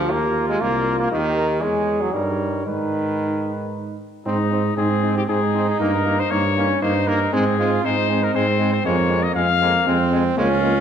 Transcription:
Already playing: D2 F3 F4 A#4
0.09 D#2 A#3 F4 G4 A#4
0.49 G#3
0.61 C2 A#3 F4 D5
1.00 A#3
1.11 D#2 D#3 G4 A#4
1.36 A#4
1.62 E2 G#3 G#4 C#5
2.01 F#3
2.13 G2 G3 D#4 A#4 C#5
2.66 G#2 D#3 D#4 B4
4.25 G#2 C4 D#4
4.51 C4 D#4
4.77 G#2 C4 D#4 G#4
5.03 C4 D#4
5.17 G4
5.29 G#2 C4 D#4 G#4
5.55 C4 D#4
5.69 G#4
5.80 G2 A#3 D#4 A#4
6.06 A#3 D#4
6.19 C5
6.31 G2 A#3 D#4 C#5
6.56 A#3 C#4 D#4
6.82 G2 A#3 D#4 C5
7.07 A#3 D#4 A#4
7.33 G#2 G#3 C4 G#4
7.58 G#3 C4 F4
7.83 G#2 G#3 C4 D#4 C5
8.09 G#3 C4
8.23 A#4
8.33 G#2 G#3 C4 C5
8.59 G#3 C4
8.73 C5
8.84 F2 G#3 A#3 C4 C#5
9.10 G#3 C4
9.23 D#5
9.34 F2 G#3 C4 F5
9.60 G#3 A#3 C4
9.86 F2 G#3 C4
10.11 G#3 C4
10.37 C#2 G#3 A#3 C#4 F4
10.62 G#3 A#3

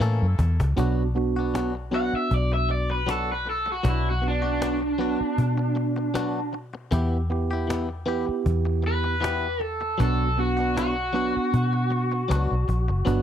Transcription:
Already playing: A#3 E4 A4
0.00 A2 E3 A#3 C#4 A4, cajon slap
0.22 F#2
0.39 E2, muted clean electric guitar stroke, cajon bass
0.60 C#2, muted clean electric guitar stroke, cajon bass
0.76 B1 F#3 B3 D4 F#4, cajon bass
1.15 B3 D4 F#4, muted clean electric guitar stroke, cajon slap
1.36 B3 D4 F#4
1.54 F#3 B3 D4 F#4, cajon slap
1.75 muted clean electric guitar stroke
1.91 F#3 B3 D4 F#4
1.95 F#5
2.13 E5, muted fingered electric bass stroke, muted clean electric guitar stroke
2.31 B1 D5, cajon bass, cajon slap
2.52 E5, muted clean electric guitar stroke
2.69 D5, muted clean electric guitar stroke, cajon slap
2.90 B4, muted clean electric guitar stroke
3.07 F#3 B3 D4 F#4 A4, cajon slap
3.32 B4
3.46 A4, muted clean electric guitar stroke, cajon slap
3.66 muted clean electric guitar stroke
3.72 F#4
3.83 B1 F#3 B3 D4 F#4, cajon bass
3.88 E4
4.10 F#4
4.22 B3 D4 F#4, muted clean electric guitar stroke, cajon slap
4.28 D4
4.42 B3 D4 F#4
4.60 F#3 B3 D4 F#4, cajon slap
4.82 muted clean electric guitar stroke
4.99 F#3 B3 D4 F#4, cajon slap
5.19 muted clean electric guitar stroke, muted fingered electric bass stroke
5.38 B2, cajon bass
5.58 muted clean electric guitar stroke
5.76 muted clean electric guitar stroke, cajon slap
5.96 muted clean electric guitar stroke
6.14 F#3 B3 D4 F#4, cajon slap
6.53 muted clean electric guitar stroke, cajon slap
6.74 muted clean electric guitar stroke
6.91 E2 E3 B3 E4 G4, cajon bass
7.30 B3 E4 G4, muted clean electric guitar stroke, cajon slap
7.51 B3 E4 G4
7.68 E3 B3 E4, cajon slap
7.72 G4
7.89 muted clean electric guitar stroke
8.06 E3 B3 E4 G4, cajon slap
8.27 muted clean electric guitar stroke, muted fingered electric bass stroke
8.46 E2, cajon bass, cajon slap
8.65 muted clean electric guitar stroke
8.83 muted clean electric guitar stroke, cajon slap
8.87 B4
9.04 muted clean electric guitar stroke
9.21 E3 B3 E4 G4, cajon slap
9.60 A4, muted clean electric guitar stroke, cajon slap
9.81 muted clean electric guitar stroke
9.98 B1 F#3 B3 D4 F#4, cajon bass
10.02 A4
10.37 B3 D4 F#4, muted clean electric guitar stroke, cajon slap
10.57 B3 D4 F#4
10.75 F#3 B3 D4 F#4, cajon slap
10.96 muted clean electric guitar stroke
11.13 F#3 B3 D4 F#4, cajon slap
11.35 muted clean electric guitar stroke, muted fingered electric bass stroke
11.54 B2, cajon bass
11.73 muted clean electric guitar stroke
11.91 muted clean electric guitar stroke, cajon slap
12.12 muted clean electric guitar stroke
12.28 C#2 F#3 B3 D4 F#4, cajon slap
12.51 B1
12.68 A#1, muted clean electric guitar stroke, cajon bass
12.88 F#1, muted clean electric guitar stroke
13.05 G1 F#3 B3 D4 F#4, cajon bass

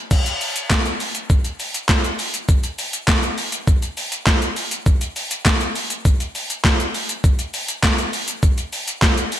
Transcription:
0.11 kick, crash, shaker
0.26 closed hi-hat, shaker
0.41 open hi-hat, shaker
0.56 closed hi-hat, shaker
0.70 kick, snare, clap, shaker
0.86 closed hi-hat, shaker
1.00 open hi-hat, shaker
1.15 closed hi-hat, shaker
1.30 kick, shaker
1.44 closed hi-hat, shaker
1.60 open hi-hat, shaker
1.74 closed hi-hat, shaker
1.89 kick, snare, clap, shaker
2.04 closed hi-hat, shaker
2.19 open hi-hat, shaker
2.34 closed hi-hat, shaker
2.49 kick, shaker
2.63 closed hi-hat, shaker
2.78 open hi-hat, shaker
2.93 closed hi-hat, shaker
3.08 kick, snare, clap, shaker
3.23 closed hi-hat, shaker
3.38 open hi-hat, shaker
3.52 closed hi-hat, shaker
3.67 kick, shaker
3.82 closed hi-hat, shaker
3.97 open hi-hat, shaker
4.12 closed hi-hat, shaker
4.27 kick, snare, clap, shaker
4.42 closed hi-hat, shaker
4.56 open hi-hat, shaker
4.71 closed hi-hat, shaker
4.86 kick, shaker
5.01 closed hi-hat, shaker
5.16 open hi-hat, shaker
5.31 closed hi-hat, shaker
5.46 kick, snare, clap, shaker
5.61 closed hi-hat, shaker
5.75 open hi-hat, shaker
5.90 closed hi-hat, shaker
6.05 kick, shaker
6.20 closed hi-hat, shaker
6.35 open hi-hat, shaker
6.50 closed hi-hat, shaker
6.65 kick, snare, clap, shaker
6.80 closed hi-hat, shaker
6.94 open hi-hat, shaker
7.09 closed hi-hat, shaker
7.24 kick, shaker
7.39 closed hi-hat, shaker
7.54 open hi-hat, shaker
7.68 closed hi-hat, shaker
7.83 kick, snare, clap, shaker
7.98 closed hi-hat, shaker
8.13 open hi-hat, shaker
8.28 closed hi-hat, shaker
8.43 kick, shaker
8.58 closed hi-hat, shaker
8.73 open hi-hat, shaker
8.88 closed hi-hat, shaker
9.02 kick, snare, clap, shaker
9.17 closed hi-hat, shaker
9.32 open hi-hat, shaker

